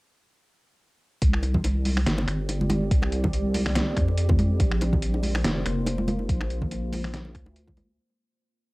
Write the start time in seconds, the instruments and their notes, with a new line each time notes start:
1.22 wobble bass C2, ambient pad C4 G4 D5, kick, closed hi-hat
1.34 finger snap
1.43 closed hi-hat, high bongo
1.54 kick, low conga
1.64 closed hi-hat, high bongo
1.85 open hi-hat, high conga
1.97 finger snap, high bongo
2.06 wobble bass G1, snare, closed hi-hat
2.18 high bongo
2.27 wobble bass G1, finger snap, closed hi-hat
2.49 closed hi-hat, high bongo
2.61 high conga
2.70 closed hi-hat, high bongo, high conga
2.91 wobble bass C2, kick, closed hi-hat
3.02 finger snap, high bongo
3.12 closed hi-hat
3.24 kick, high bongo, low conga
3.33 closed hi-hat
3.54 open hi-hat, high bongo, high conga
3.66 finger snap, snare
3.75 snare, closed hi-hat, high bongo
3.97 wobble bass F2, finger snap, kick, closed hi-hat
4.08 high bongo
4.18 closed hi-hat
4.29 kick, high bongo, high conga, low conga
4.39 closed hi-hat, high conga
4.60 wobble bass A#1, ambient pad A#3 F4 C5, kick, closed hi-hat, high bongo
4.72 finger snap
4.81 closed hi-hat, high bongo
4.93 kick, low conga
5.02 closed hi-hat
5.14 high bongo
5.23 open hi-hat, high conga
5.35 finger snap, high bongo
5.44 wobble bass F1, snare, closed hi-hat
5.66 wobble bass F1, finger snap, closed hi-hat, high bongo
5.86 closed hi-hat, high bongo
5.98 high conga
6.08 closed hi-hat, high conga
6.19 high bongo
6.29 wobble bass A#1, kick, closed hi-hat
6.41 finger snap, high bongo
6.50 closed hi-hat
6.62 kick, low conga
6.71 closed hi-hat, high bongo
6.92 open hi-hat, high bongo, high conga
7.04 finger snap, snare
7.14 snare, closed hi-hat
7.25 high bongo
7.35 wobble bass D2, finger snap, kick, closed hi-hat
7.46 high bongo
7.56 closed hi-hat
7.68 kick, high conga, low conga
7.77 closed hi-hat, high bongo, high conga